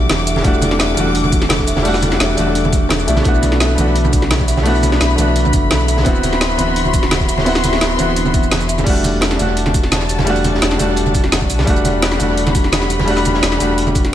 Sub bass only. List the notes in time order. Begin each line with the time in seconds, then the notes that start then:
0.10 E1
0.44 E1
0.97 E1
2.20 E1
2.38 E1
3.08 B1
3.25 B1
3.78 B1
5.01 B1
5.18 B1
5.53 F#1
5.71 B1
6.06 D1
6.59 D1
7.81 D1
7.99 D1
8.43 E1
8.87 E1
9.39 E1
10.62 E1
10.80 E1
11.50 B1
11.67 E1
12.20 E1
13.43 E1
13.60 E1